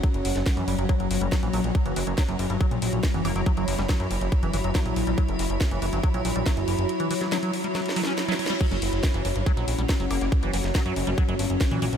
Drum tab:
CC |------------------------------------------------|------------------------------------------------|------------------------------------------------|------------------------------------------------|
HH |x--x--o--x--x--x--o--x--x--x--o--x--x--x--o--x--|x--x--o--x--x--x--o--x--x--x--o--x--x--x--o--x--|x--x--o--x--x--x--o--x--x--x--o--x--x--x--o--x--|x--x--o--x--x--x--o--x--x--x--o--x--x--x--o--x--|
SD |---------o--o-----------------------o-----------|------------o-----------------------o-----------|---------o--o-----------------------o-----------|------------o-----------------------o-----------|
BD |o-----------o-----------o-----------o-----------|o-----------o-----------o-----------o-----------|o-----------o-----------o-----------o-----------|o-----------o-----------o-----------o-----------|

CC |------------------------------------------------|x-----------------------------------------------|------------------------------------------------|
HH |x--x--o--x--x--x--o--x--x--x--o--x--x--x--o--x--|x--x--o--x--x--x--o--x--x--x--o--x--x--x--o--x--|x--x--o--x--x--x--o--x--x--x--o--x--x--x--o--x--|
SD |---------o--o-----------o---o---o---o---o---o---|------------o-----------------------o-----------|---------o--o-----------------------o-----------|
BD |------------------------------------------------|o-----------o-----------o-----------o-----------|o-----------o-----------o-----------o-----------|